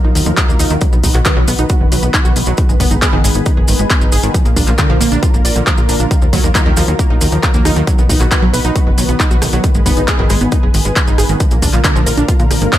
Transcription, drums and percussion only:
0.15 open hi-hat, maracas
0.26 closed hi-hat, maracas
0.37 kick, clap, closed hi-hat, maracas
0.49 maracas
0.59 open hi-hat, maracas
0.70 closed hi-hat, maracas
0.81 kick, closed hi-hat, maracas
0.93 maracas
1.04 kick, open hi-hat, maracas
1.14 clap, closed hi-hat, maracas
1.25 kick, clap, closed hi-hat, maracas
1.48 open hi-hat, maracas
1.58 closed hi-hat, maracas
1.69 kick, closed hi-hat, maracas
1.92 open hi-hat, maracas
2.03 closed hi-hat, maracas
2.14 kick, clap, closed hi-hat, maracas
2.25 maracas
2.36 open hi-hat, maracas
2.46 closed hi-hat, maracas
2.57 kick, closed hi-hat, maracas
2.69 maracas
2.80 kick, open hi-hat, maracas
2.91 closed hi-hat, maracas
3.02 kick, clap, closed hi-hat, maracas
3.24 open hi-hat, maracas
3.34 closed hi-hat, maracas
3.46 kick, closed hi-hat, maracas
3.68 open hi-hat, maracas
3.79 closed hi-hat, maracas
3.90 kick, clap, closed hi-hat, maracas
4.01 maracas
4.12 open hi-hat, maracas
4.23 closed hi-hat, maracas
4.34 kick, closed hi-hat, maracas
4.46 closed hi-hat, maracas
4.56 kick, open hi-hat, maracas
4.67 clap, closed hi-hat, maracas
4.78 kick, clap, closed hi-hat, maracas
5.01 open hi-hat, maracas
5.12 closed hi-hat, maracas
5.23 kick, closed hi-hat, maracas
5.34 maracas
5.45 open hi-hat, maracas
5.56 closed hi-hat, maracas
5.67 kick, clap, closed hi-hat, maracas
5.78 maracas
5.89 open hi-hat, maracas
6.00 closed hi-hat, maracas
6.11 kick, closed hi-hat, maracas
6.22 maracas
6.33 kick, open hi-hat, maracas
6.44 closed hi-hat, maracas
6.55 kick, clap, closed hi-hat, maracas
6.77 cross-stick, open hi-hat, maracas
6.88 closed hi-hat, maracas
6.99 kick, closed hi-hat, maracas
7.21 open hi-hat, maracas
7.32 closed hi-hat, maracas
7.43 kick, clap, closed hi-hat, maracas
7.54 maracas
7.65 cross-stick, open hi-hat, maracas
7.76 closed hi-hat, maracas
7.87 kick, closed hi-hat, maracas
7.98 maracas
8.09 kick, open hi-hat, maracas
8.21 clap, closed hi-hat, maracas
8.31 kick, clap, closed hi-hat, maracas
8.54 open hi-hat, maracas
8.65 closed hi-hat, maracas
8.76 kick, closed hi-hat, maracas
8.98 open hi-hat, maracas
9.09 closed hi-hat, maracas
9.20 kick, clap, closed hi-hat, maracas
9.31 maracas
9.42 cross-stick, open hi-hat, maracas
9.53 closed hi-hat, maracas
9.64 kick, closed hi-hat, maracas
9.75 maracas
9.86 kick, open hi-hat, maracas
9.97 closed hi-hat, maracas
10.08 kick, clap, closed hi-hat, maracas
10.30 cross-stick, open hi-hat, maracas
10.41 closed hi-hat, maracas
10.52 kick, closed hi-hat, maracas
10.74 open hi-hat, maracas
10.85 closed hi-hat, maracas
10.96 kick, clap, closed hi-hat, maracas
11.07 maracas
11.18 cross-stick, open hi-hat, maracas
11.29 closed hi-hat, maracas
11.40 kick, closed hi-hat, maracas
11.51 closed hi-hat, maracas
11.62 kick, open hi-hat, maracas
11.73 clap, closed hi-hat, maracas
11.84 kick, clap, closed hi-hat, maracas
11.96 maracas
12.06 open hi-hat, maracas
12.17 closed hi-hat, maracas
12.29 kick, closed hi-hat, maracas
12.40 closed hi-hat, maracas
12.51 cross-stick, open hi-hat, maracas
12.62 closed hi-hat, maracas
12.73 kick, clap, closed hi-hat, maracas

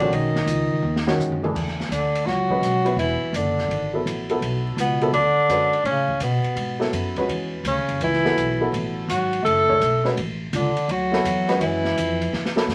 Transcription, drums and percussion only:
0.00 ride
0.13 ride
0.35 snare
0.47 hi-hat pedal, ride
0.71 kick
0.96 snare
1.07 snare
1.20 hi-hat pedal, mid tom
1.32 mid tom
1.44 mid tom
1.56 kick, crash
1.68 snare
1.80 snare
1.92 hi-hat pedal, ride
2.15 ride
2.27 snare
2.50 kick
2.63 hi-hat pedal, ride
2.86 ride
2.99 ride
3.34 hi-hat pedal, ride
3.58 snare
3.71 ride
4.07 hi-hat pedal, ride
4.29 ride
4.42 ride
4.78 hi-hat pedal, ride
5.01 ride
5.14 ride
5.50 hi-hat pedal, ride
5.73 ride
5.85 ride
6.08 kick
6.20 hi-hat pedal, ride
6.44 ride
6.57 ride
6.81 snare
6.93 hi-hat pedal, ride
7.16 kick, ride
7.29 ride
7.65 hi-hat pedal, ride
7.89 ride
8.01 ride
8.13 snare
8.25 snare
8.38 hi-hat pedal, ride
8.61 kick
8.74 ride
9.10 hi-hat pedal, ride
9.33 ride
9.46 ride
9.69 kick
9.81 hi-hat pedal, ride
10.05 snare
10.17 ride
10.53 hi-hat pedal, ride
10.77 ride
10.89 ride
11.13 snare
11.25 hi-hat pedal, ride
11.49 snare, ride
11.61 ride
11.85 snare
11.98 hi-hat pedal, ride
12.22 ride
12.33 snare
12.45 snare
12.57 snare
12.69 snare, hi-hat pedal

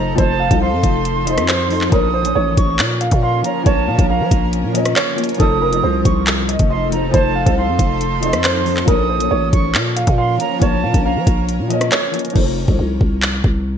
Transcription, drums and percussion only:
0.18 kick, closed hi-hat
0.51 kick, closed hi-hat
0.83 kick, closed hi-hat
1.05 closed hi-hat
1.27 closed hi-hat
1.38 cross-stick, closed hi-hat
1.49 clap, closed hi-hat
1.70 open hi-hat
1.81 clap
1.92 kick, closed hi-hat
2.25 closed hi-hat
2.57 kick, closed hi-hat
2.79 clap, closed hi-hat
3.01 closed hi-hat
3.11 kick, closed hi-hat
3.44 closed hi-hat
3.66 kick, closed hi-hat
3.99 kick, closed hi-hat
4.31 kick, closed hi-hat
4.53 closed hi-hat
4.75 closed hi-hat
4.85 cross-stick, closed hi-hat
4.96 clap, closed hi-hat
5.18 closed hi-hat
5.24 closed hi-hat
5.29 closed hi-hat
5.34 closed hi-hat
5.40 kick, closed hi-hat
5.73 closed hi-hat
6.05 kick, closed hi-hat
6.27 clap, closed hi-hat
6.49 closed hi-hat
6.59 kick, closed hi-hat
6.92 closed hi-hat
7.14 kick, closed hi-hat
7.46 kick, closed hi-hat
7.79 kick, closed hi-hat
8.01 closed hi-hat
8.23 closed hi-hat
8.33 cross-stick, closed hi-hat
8.44 clap, closed hi-hat
8.66 open hi-hat
8.77 clap
8.88 kick, closed hi-hat
9.20 closed hi-hat
9.53 kick, closed hi-hat
9.75 clap, closed hi-hat
9.97 closed hi-hat
10.07 kick, closed hi-hat
10.40 closed hi-hat
10.62 kick, closed hi-hat
10.94 kick, closed hi-hat
11.27 kick, closed hi-hat
11.49 closed hi-hat
11.70 closed hi-hat
11.81 cross-stick, closed hi-hat
11.92 clap, closed hi-hat
12.14 closed hi-hat
12.19 closed hi-hat
12.25 closed hi-hat
12.30 closed hi-hat
12.36 kick, crash
12.68 kick
13.01 kick
13.23 clap
13.44 kick

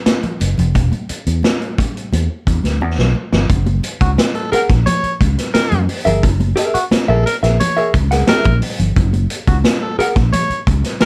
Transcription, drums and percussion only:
0.06 snare, closed hi-hat, high conga
0.23 closed hi-hat, high conga, low conga
0.40 closed hi-hat, muted conga
0.58 closed hi-hat, low conga
0.75 kick, closed hi-hat, muted conga
0.92 closed hi-hat, high conga
1.09 closed hi-hat
1.27 closed hi-hat
1.43 snare, closed hi-hat, muted conga, high conga
1.62 closed hi-hat
1.78 kick, closed hi-hat, muted conga
1.97 closed hi-hat
2.13 closed hi-hat, muted conga, high conga
2.47 kick, closed hi-hat, muted conga
2.64 snare, closed hi-hat, high conga
2.81 muted conga, high conga
2.98 snare, high conga, low conga
3.15 muted conga
3.32 snare, low conga
3.50 kick, closed hi-hat, muted conga
3.66 closed hi-hat, high conga
3.83 closed hi-hat, muted conga
4.01 kick, closed hi-hat
4.18 snare, closed hi-hat, muted conga, high conga
4.35 closed hi-hat
4.53 closed hi-hat, muted conga
4.70 kick, snare, closed hi-hat
4.87 closed hi-hat, muted conga, high conga, low conga
5.04 closed hi-hat
5.21 kick, closed hi-hat, muted conga
5.38 snare, closed hi-hat
5.54 snare, closed hi-hat, muted conga, high conga
5.72 closed hi-hat, high conga, low conga
5.89 open hi-hat, muted conga
6.06 closed hi-hat, low conga
6.23 kick, closed hi-hat
6.40 closed hi-hat, high conga
6.57 closed hi-hat
6.75 closed hi-hat
6.91 snare, closed hi-hat, high conga
7.27 closed hi-hat
7.44 snare, closed hi-hat
7.60 closed hi-hat, muted conga, high conga, low conga
7.77 closed hi-hat
7.94 kick, closed hi-hat, muted conga
8.11 snare, closed hi-hat
8.27 snare, closed hi-hat, muted conga, high conga
8.44 kick, closed hi-hat, high conga, low conga
8.62 open hi-hat
8.79 closed hi-hat, low conga
8.96 kick, closed hi-hat, muted conga
9.13 closed hi-hat, high conga
9.30 closed hi-hat
9.47 kick, closed hi-hat
9.64 snare, closed hi-hat, high conga
10.00 closed hi-hat
10.16 kick, snare, closed hi-hat
10.33 closed hi-hat, high conga, low conga
10.50 closed hi-hat
10.67 kick, closed hi-hat, muted conga
10.84 snare, closed hi-hat
11.01 snare, closed hi-hat, muted conga, high conga

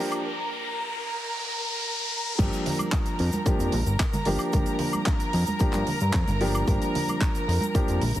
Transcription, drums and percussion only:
0.12 closed hi-hat, high woodblock
2.39 kick, closed hi-hat, crash, high conga, shaker
2.53 closed hi-hat, shaker
2.66 open hi-hat, low conga
2.79 closed hi-hat, high conga, high woodblock, shaker
2.92 kick, clap, closed hi-hat, shaker
3.06 closed hi-hat, shaker
3.19 open hi-hat
3.32 closed hi-hat, high conga, shaker
3.46 kick, closed hi-hat, shaker
3.60 closed hi-hat, shaker
3.72 open hi-hat, high conga, low conga
3.86 closed hi-hat, shaker
4.00 kick, clap, closed hi-hat, shaker
4.13 closed hi-hat, high conga, low conga, shaker
4.25 open hi-hat
4.39 closed hi-hat, high woodblock, shaker
4.53 kick, closed hi-hat, high conga, shaker
4.66 closed hi-hat, shaker
4.79 open hi-hat, low conga
4.93 closed hi-hat, high conga, high woodblock, shaker
5.06 kick, clap, closed hi-hat, shaker
5.20 closed hi-hat, shaker
5.33 open hi-hat
5.47 closed hi-hat, high conga, shaker
5.59 kick, closed hi-hat, shaker
5.73 clap, closed hi-hat, shaker
5.87 open hi-hat, high conga, low conga
6.00 closed hi-hat, shaker
6.13 kick, clap, closed hi-hat, shaker
6.27 closed hi-hat, high conga, low conga, shaker
6.41 open hi-hat
6.55 closed hi-hat, high woodblock, shaker
6.68 kick, closed hi-hat, high conga, shaker
6.82 closed hi-hat, shaker
6.95 open hi-hat, low conga
7.08 closed hi-hat, high conga, high woodblock, shaker
7.21 kick, clap, closed hi-hat, shaker
7.35 closed hi-hat, shaker
7.49 open hi-hat
7.61 closed hi-hat, high conga, shaker
7.75 kick, closed hi-hat, shaker
7.88 closed hi-hat, shaker
8.02 open hi-hat, high conga, low conga
8.15 closed hi-hat, shaker

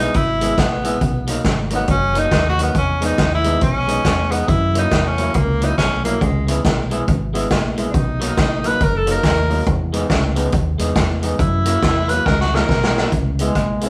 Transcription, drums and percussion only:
0.14 kick, closed hi-hat
0.41 closed hi-hat
0.58 kick, snare, closed hi-hat
0.84 closed hi-hat
1.01 kick, closed hi-hat
1.27 closed hi-hat
1.44 kick, snare, closed hi-hat
1.70 closed hi-hat
1.88 kick, closed hi-hat
2.15 closed hi-hat
2.31 kick, snare, closed hi-hat
2.59 closed hi-hat
2.75 kick, closed hi-hat
3.02 closed hi-hat
3.18 kick, snare, closed hi-hat
3.44 closed hi-hat
3.61 kick, closed hi-hat
3.88 closed hi-hat
4.05 kick, snare, closed hi-hat
4.32 closed hi-hat
4.48 kick, closed hi-hat
4.75 closed hi-hat
4.91 kick, snare, closed hi-hat
5.18 closed hi-hat
5.34 kick, closed hi-hat
5.62 closed hi-hat
5.78 kick, snare, closed hi-hat
6.05 closed hi-hat
6.21 kick, closed hi-hat
6.48 closed hi-hat
6.64 kick, snare, closed hi-hat
6.91 closed hi-hat
7.08 kick, closed hi-hat
7.35 closed hi-hat
7.50 kick, snare, closed hi-hat
7.77 closed hi-hat
7.94 kick, closed hi-hat
8.21 closed hi-hat
8.37 kick, snare, closed hi-hat
8.64 closed hi-hat
8.80 kick, closed hi-hat
9.07 closed hi-hat
9.23 kick, snare, closed hi-hat
9.50 open hi-hat
9.67 kick, closed hi-hat
9.93 closed hi-hat
10.10 kick, snare, closed hi-hat
10.36 closed hi-hat
10.52 kick, closed hi-hat
10.79 closed hi-hat
10.95 kick, snare, closed hi-hat
11.23 closed hi-hat
11.39 kick, closed hi-hat
11.65 closed hi-hat
11.83 kick, snare, closed hi-hat
12.09 closed hi-hat
12.26 kick, snare
12.40 snare
12.55 snare
12.69 kick, snare
12.83 snare
12.98 snare
13.12 kick, closed hi-hat
13.39 closed hi-hat
13.55 kick, cross-stick, closed hi-hat
13.81 closed hi-hat

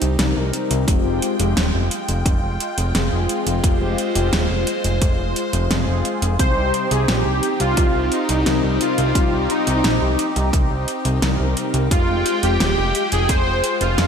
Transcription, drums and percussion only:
0.02 closed hi-hat
0.19 snare, closed hi-hat
0.53 closed hi-hat
0.71 closed hi-hat
0.88 kick, closed hi-hat
1.22 closed hi-hat
1.40 closed hi-hat
1.57 snare, closed hi-hat
1.91 closed hi-hat
2.09 closed hi-hat
2.26 kick, closed hi-hat
2.60 closed hi-hat
2.78 closed hi-hat
2.95 snare, closed hi-hat
3.29 closed hi-hat
3.47 closed hi-hat
3.64 kick, closed hi-hat
3.98 closed hi-hat
4.16 closed hi-hat
4.33 snare, closed hi-hat
4.67 closed hi-hat
4.84 closed hi-hat
5.02 kick, closed hi-hat
5.36 closed hi-hat
5.53 closed hi-hat
5.71 snare, closed hi-hat
6.05 closed hi-hat
6.22 closed hi-hat
6.39 kick, closed hi-hat
6.74 closed hi-hat
6.91 closed hi-hat
7.08 snare, closed hi-hat
7.43 closed hi-hat
7.60 closed hi-hat
7.77 kick, closed hi-hat
8.12 closed hi-hat
8.29 closed hi-hat
8.46 snare, closed hi-hat
8.81 closed hi-hat
8.98 closed hi-hat
9.15 kick, closed hi-hat
9.50 closed hi-hat
9.67 closed hi-hat
9.84 snare, closed hi-hat
10.19 closed hi-hat
10.36 closed hi-hat
10.53 kick, closed hi-hat
10.88 closed hi-hat
11.05 closed hi-hat
11.22 snare, closed hi-hat
11.57 closed hi-hat
11.74 closed hi-hat
11.91 kick, closed hi-hat
12.26 closed hi-hat
12.43 closed hi-hat
12.60 snare, closed hi-hat
12.95 closed hi-hat
13.12 closed hi-hat
13.29 kick, closed hi-hat
13.64 closed hi-hat
13.81 closed hi-hat
13.98 snare, closed hi-hat

